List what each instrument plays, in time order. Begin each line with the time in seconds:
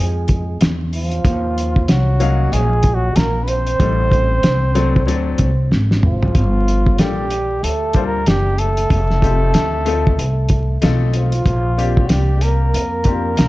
Already playing: upright bass F2, trombone G#3, flugelhorn G#4
0.28 kick, closed hi-hat
0.61 upright bass E2, snare, closed hi-hat
0.93 trombone F3, flugelhorn F4, open hi-hat
1.11 closed hi-hat
1.25 upright bass D#2, kick, closed hi-hat
1.58 closed hi-hat
1.76 kick
1.88 upright bass C2, trombone F#3, flugelhorn F#4, snare, closed hi-hat
2.20 upright piano F#3 A#3 C#4 D#4 F5, closed hi-hat
2.52 upright bass A#1, trombone G#3, flugelhorn G#4, closed hi-hat
2.83 kick, closed hi-hat
2.94 trombone F#3, flugelhorn F#4
3.16 upright bass A#1, trombone A#3, flugelhorn A#4, snare, closed hi-hat
3.43 trombone B3, flugelhorn B4
3.48 trombone C4, flugelhorn C5, closed hi-hat
3.67 closed hi-hat
3.80 upright bass A1, upright piano G3 A3 C4 D#4 A4, kick, closed hi-hat
4.12 kick, closed hi-hat
4.43 upright bass C2, snare, closed hi-hat
4.75 upright piano F#3 A3 C4 D4 A4, closed hi-hat
4.96 kick
5.07 upright bass D2, upright piano F#3 A3 C4 D4 A4, closed hi-hat
5.38 upright bass C2, kick, closed hi-hat
5.71 upright bass G#1, snare
5.91 snare
6.02 trombone F3, flugelhorn F4, mid tom
6.23 floor tom
6.35 upright bass G1, kick, closed hi-hat
6.68 closed hi-hat
6.87 kick
6.98 upright bass A#1, trombone G3, upright piano G3 A#3 D4 F4 A4, flugelhorn G4, snare, closed hi-hat
7.30 closed hi-hat
7.63 upright bass D2, trombone A3, flugelhorn A4, closed hi-hat
7.93 upright piano G3 A#3 D4 F4 C5, kick, closed hi-hat
8.05 trombone A#3, flugelhorn A#4
8.26 upright bass F#1, trombone G3, flugelhorn G4, snare, closed hi-hat
8.57 trombone A3, flugelhorn A4, closed hi-hat
8.77 closed hi-hat
8.90 upright bass F1, kick, closed hi-hat
9.10 snare
9.22 upright piano A3 C4 D#4 F4 G4, kick, closed hi-hat
9.54 upright bass D2, snare, closed hi-hat
9.86 upright piano A3 C4 D#4 F4 A4, closed hi-hat
10.07 kick
10.18 upright bass C2, closed hi-hat
10.49 kick, closed hi-hat
10.82 upright bass B1, upright piano A3 C4 D#4 F4 A4, snare, closed hi-hat
11.13 trombone F3, flugelhorn F4, closed hi-hat
11.32 closed hi-hat
11.46 upright bass A#1, kick, closed hi-hat
11.77 upright piano A#3 C4 D4 F4 G4, closed hi-hat
11.97 kick
12.05 trombone F#3, flugelhorn F#4
12.09 upright bass C2, trombone G3, flugelhorn G4, snare, closed hi-hat
12.41 trombone A#3, flugelhorn A#4, closed hi-hat
12.74 upright bass F2, closed hi-hat
13.04 upright piano A#3 C4 D4 F4 G4, kick, closed hi-hat
13.37 upright bass B1, snare, closed hi-hat